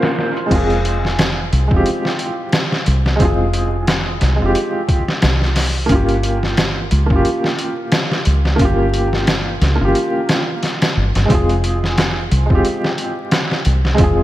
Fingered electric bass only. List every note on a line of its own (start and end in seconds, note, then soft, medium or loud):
0.51 1.49 F1 loud
1.53 1.69 C2 medium
1.71 1.84 F1 medium
2.87 3.17 C2 medium
3.20 4.19 F1 loud
4.22 4.39 C2 loud
4.41 4.54 F1 medium
5.23 5.88 C2 medium
5.90 6.88 G1 loud
6.92 7.08 C#2 loud
7.11 7.23 G1 medium
8.27 8.56 C#2 medium
8.60 9.58 G1 loud
9.62 9.78 C#2 medium
9.81 9.93 G1 medium
10.97 11.13 G1 medium
11.16 11.28 G1 loud
11.30 12.28 F1 medium
12.32 12.48 C2 medium
12.51 12.63 F1 medium
13.66 13.96 C2 medium
13.99 14.23 F1 loud